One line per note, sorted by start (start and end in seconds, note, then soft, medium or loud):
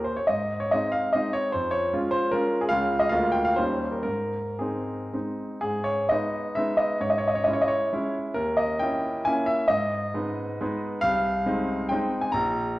0.00 0.15 D#2 soft
0.04 0.17 C5 medium
0.16 0.28 C#5 medium
0.27 0.71 G#2 soft
0.27 0.60 D#5 medium
0.60 0.72 C#5 medium
0.71 1.11 G#3 soft
0.71 1.11 C4 soft
0.71 1.11 D#4 soft
0.71 0.94 D#5 medium
0.92 1.13 F5 medium
1.13 1.50 G#3 soft
1.13 1.50 C4 soft
1.13 1.50 D#4 soft
1.13 1.33 D#5 medium
1.33 1.53 C#5 medium
1.52 1.91 F2 soft
1.52 1.72 C5 medium
1.71 2.12 C#5 medium
1.93 2.29 G#3 soft
1.93 2.29 C#4 soft
1.93 2.29 F4 soft
2.11 2.31 C5 medium
2.31 2.68 G#3 soft
2.31 2.68 C#4 soft
2.31 2.68 F4 soft
2.31 2.61 A#4 medium
2.61 2.71 G#4 medium
2.69 3.10 C#2 medium
2.69 3.08 G#3 soft
2.69 3.08 C#4 soft
2.69 3.08 F4 soft
2.69 3.00 F5 medium
3.00 3.11 D#5 medium
3.09 3.55 D2 medium
3.09 3.53 G#3 soft
3.09 3.53 A#3 soft
3.09 3.53 F4 soft
3.09 3.33 F5 medium
3.32 3.44 G5 medium
3.45 3.57 F5 medium
3.56 4.04 D#2 soft
3.56 4.02 G3 soft
3.56 4.02 C#4 soft
3.56 4.02 D#4 soft
3.56 3.92 C5 medium
3.92 4.02 A#4 soft
4.03 4.59 G#2 soft
4.03 4.59 A#4 medium
4.59 5.10 G#3 soft
4.59 5.10 C4 soft
4.59 5.10 D#4 soft
4.59 5.13 G#4 soft
5.13 5.59 G#3 soft
5.13 5.60 C4 soft
5.13 5.60 D#4 soft
5.61 6.09 G#2 soft
5.61 5.86 G#4 medium
5.84 6.09 C#5 medium
6.09 6.54 G#3 soft
6.09 6.54 B3 soft
6.09 6.54 D#4 soft
6.09 6.57 D#5 medium
6.55 6.97 G#3 soft
6.55 6.97 B3 soft
6.55 6.97 D#4 soft
6.55 6.78 E5 medium
6.77 7.00 D#5 medium
7.00 7.45 G#2 medium
7.00 7.09 C#5 medium
7.10 7.18 D#5 medium
7.18 7.26 C#5 medium
7.28 7.36 D#5 medium
7.35 7.44 C#5 medium
7.44 7.88 G#3 soft
7.44 7.89 C#4 soft
7.44 7.89 E4 soft
7.44 7.53 D#5 medium
7.53 7.62 C#5 medium
7.62 7.70 D#5 medium
7.68 8.14 C#5 medium
7.93 8.33 G#3 soft
7.93 8.33 C#4 soft
7.93 8.33 E4 soft
8.34 8.80 D#2 soft
8.34 8.58 A#4 medium
8.57 8.80 D#5 medium
8.79 9.22 A#3 soft
8.79 9.22 C#4 soft
8.79 9.23 E4 soft
8.79 9.25 G5 medium
9.25 9.66 A#3 soft
9.25 9.66 C#4 soft
9.25 9.67 E4 medium
9.25 9.48 G#5 medium
9.46 9.69 E5 medium
9.68 10.13 G#2 medium
9.68 10.81 D#5 medium
10.14 10.56 G#3 soft
10.14 10.57 B3 soft
10.14 10.57 D#4 soft
10.61 10.99 G#3 soft
10.61 10.99 B3 medium
10.61 10.99 D#4 medium
11.01 11.45 C2 medium
11.01 11.91 F5 loud
11.46 11.88 G#3 soft
11.46 11.88 C4 soft
11.46 11.88 D#4 medium
11.89 12.30 G#3 medium
11.89 12.30 C4 medium
11.89 12.31 D#4 medium
11.89 12.22 G5 medium
12.22 12.33 G#5 medium
12.32 12.77 A#1 medium
12.32 12.79 A#5 loud